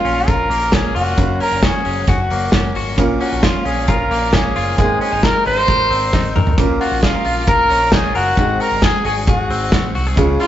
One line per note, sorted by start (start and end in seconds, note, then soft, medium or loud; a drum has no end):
0.00 1.18 A#2 medium
0.00 1.14 A#3 medium
0.00 1.14 C#4 medium
0.00 0.26 F4 medium
0.00 0.30 F4 loud
0.00 1.15 F4 medium
0.00 1.15 A#4 medium
0.05 0.24 A#1 medium
0.05 0.72 C#4 medium
0.05 open hi-hat medium
0.27 0.46 A#1 loud
0.27 0.94 F4 medium
0.27 0.75 A#4 loud
0.27 kick loud
0.27 hi-hat pedal medium
0.27 ride medium
0.50 0.69 A#1 loud
0.50 2.31 A#3 medium
0.50 open hi-hat medium
0.72 0.91 A#1 loud
0.72 1.40 C#4 medium
0.72 0.96 G#4 loud
0.72 kick loud
0.72 snare loud
0.72 hi-hat pedal medium
0.72 ride medium
0.95 1.14 F1 medium
0.95 1.22 F4 medium
0.95 1.38 F#4 medium
0.95 open hi-hat medium
1.16 1.36 F#1 loud
1.16 2.98 F#2 medium
1.16 2.94 A#3 medium
1.16 2.94 C#4 medium
1.16 2.95 F#4 medium
1.16 2.95 A#4 medium
1.16 kick loud
1.16 hi-hat pedal medium
1.16 ride medium
1.40 1.85 C#4 medium
1.40 1.65 A#4 loud
1.40 open hi-hat medium
1.51 1.70 F#1 medium
1.63 2.07 F#4 medium
1.63 2.10 G#4 medium
1.63 kick loud
1.63 snare loud
1.63 hi-hat pedal medium
1.63 ride medium
1.85 2.04 F#1 medium
1.85 2.53 C#4 medium
1.85 open hi-hat medium
2.07 2.26 F#1 loud
2.07 2.75 F#4 medium
2.07 2.76 F#4 medium
2.07 kick loud
2.07 hi-hat pedal medium
2.07 ride medium
2.30 2.49 F#1 medium
2.30 4.10 A#3 medium
2.30 open hi-hat medium
2.52 2.71 F#1 loud
2.52 3.03 C#4 medium
2.52 kick loud
2.52 snare loud
2.52 hi-hat pedal medium
2.52 ride medium
2.75 2.94 G#1 medium
2.75 3.03 F#4 medium
2.75 open hi-hat medium
2.97 3.16 A#1 loud
2.97 4.78 A#2 medium
2.97 4.74 A#3 medium
2.97 4.74 C#4 medium
2.97 4.74 F4 medium
2.97 4.75 A#4 medium
2.97 kick loud
2.97 hi-hat pedal medium
2.97 ride medium
3.20 3.64 C#4 medium
3.20 3.45 F#4 medium
3.20 open hi-hat medium
3.32 3.51 A#1 medium
3.43 3.87 F4 medium
3.43 3.65 F4 medium
3.43 kick loud
3.43 snare loud
3.43 hi-hat pedal medium
3.43 ride medium
3.65 3.84 A#1 loud
3.65 4.32 C#4 medium
3.65 3.90 G#4 medium
3.65 open hi-hat medium
3.88 4.07 A#1 loud
3.88 4.55 F4 medium
3.88 4.35 A#4 medium
3.88 kick loud
3.88 hi-hat pedal medium
3.88 ride medium
4.11 4.29 A#1 loud
4.11 5.90 A#3 medium
4.11 open hi-hat medium
4.33 4.83 C#4 medium
4.33 4.77 G#4 loud
4.33 kick loud
4.33 snare loud
4.33 hi-hat pedal medium
4.33 ride soft
4.56 4.74 F#1 medium
4.56 4.83 F4 medium
4.56 open hi-hat medium
4.77 4.97 G#1 loud
4.77 6.58 G#3 medium
4.77 6.54 A#3 medium
4.77 6.54 C4 medium
4.77 6.54 D#4 medium
4.77 4.99 G#4 medium
4.77 6.55 G#4 medium
4.77 kick loud
4.77 hi-hat pedal medium
4.77 ride medium
5.01 5.12 C#4 medium
5.01 5.25 G#4 medium
5.01 open hi-hat medium
5.12 5.31 G#1 medium
5.12 5.46 D#4 medium
5.23 5.68 A#4 medium
5.23 5.46 A#4 loud
5.23 kick loud
5.23 snare loud
5.23 hi-hat pedal medium
5.23 ride medium
5.45 5.64 G#1 medium
5.45 5.57 C#4 medium
5.45 6.32 C5 loud
5.45 open hi-hat medium
5.57 6.12 D#4 medium
5.68 5.87 G#1 loud
5.68 6.35 A#4 medium
5.68 kick loud
5.68 hi-hat pedal medium
5.68 ride medium
5.90 6.09 G#1 loud
5.90 6.62 C4 medium
5.90 open hi-hat medium
6.13 6.31 G#1 loud
6.13 6.62 D#4 medium
6.13 kick loud
6.13 snare medium
6.35 6.54 G#1 medium
6.35 6.62 A#4 medium
6.35 mid tom loud
6.47 floor tom medium
6.56 6.76 A#1 loud
6.56 8.37 A#2 medium
6.56 8.33 A#3 medium
6.56 8.34 C#4 medium
6.56 8.34 F4 medium
6.56 8.35 A#4 medium
6.56 kick loud
6.56 hi-hat pedal medium
6.56 ride medium
6.80 7.24 F4 medium
6.80 7.03 F#4 medium
6.80 7.01 F#5 medium
6.80 open hi-hat medium
6.91 7.10 A#1 medium
7.02 7.46 F4 loud
7.02 7.14 G#4 medium
7.02 7.48 F5 medium
7.02 kick loud
7.02 snare loud
7.02 hi-hat pedal medium
7.02 ride medium
7.14 7.47 A#4 medium
7.25 7.44 A#1 medium
7.25 7.92 F4 medium
7.25 open hi-hat medium
7.47 7.66 A#1 loud
7.47 7.94 A#4 loud
7.47 8.14 A#4 medium
7.47 7.89 A#5 loud
7.47 kick loud
7.47 hi-hat pedal medium
7.47 ride medium
7.70 7.89 A#1 loud
7.70 8.42 C#4 medium
7.70 open hi-hat medium
7.92 8.11 A#1 loud
7.92 8.04 D#4 medium
7.92 8.15 G#4 loud
7.92 8.15 G#5 medium
7.92 kick loud
7.92 snare loud
7.92 hi-hat pedal medium
7.92 ride medium
8.04 8.42 F4 medium
8.15 8.34 F#1 medium
8.15 8.62 F#4 loud
8.15 8.42 A#4 medium
8.15 8.57 F#5 medium
8.15 open hi-hat medium
8.36 8.56 G#1 loud
8.36 10.17 G#2 medium
8.36 10.13 C4 medium
8.36 10.13 D#4 medium
8.36 10.14 F#4 medium
8.36 10.14 G#4 medium
8.36 kick loud
8.36 hi-hat pedal medium
8.36 ride medium
8.60 9.04 F#4 medium
8.60 8.83 A#4 loud
8.60 8.83 A#5 medium
8.60 open hi-hat medium
8.71 8.90 G#1 medium
8.82 9.28 G#4 medium
8.82 9.04 G#4 loud
8.82 9.03 G#5 medium
8.82 kick loud
8.82 snare medium
8.82 hi-hat pedal medium
8.82 ride medium
9.05 9.23 G#1 loud
9.05 9.72 F#4 medium
9.05 9.16 G#4 medium
9.05 9.16 G#5 medium
9.05 open hi-hat medium
9.27 9.46 G#1 loud
9.27 9.91 F#4 medium
9.27 9.95 G#4 medium
9.27 9.91 F#5 medium
9.27 kick loud
9.27 hi-hat pedal medium
9.27 ride medium
9.49 9.68 G#1 loud
9.49 10.22 C4 medium
9.49 open hi-hat medium
9.72 9.91 G#1 loud
9.72 9.94 F#4 medium
9.72 kick loud
9.72 snare loud
9.72 hi-hat pedal medium
9.72 ride medium
9.95 10.13 C2 medium
9.95 10.07 F#4 medium
9.95 open hi-hat medium
10.07 10.22 G#4 medium
10.16 10.35 C#2 loud
10.16 10.47 C#3 medium
10.16 10.47 G#3 medium
10.16 10.47 C#4 medium
10.16 10.47 F4 medium
10.16 10.47 G#4 medium
10.16 kick loud
10.16 hi-hat pedal medium
10.16 ride medium
10.40 10.47 F4 medium
10.40 10.47 F4 loud
10.40 10.47 F5 medium
10.40 open hi-hat medium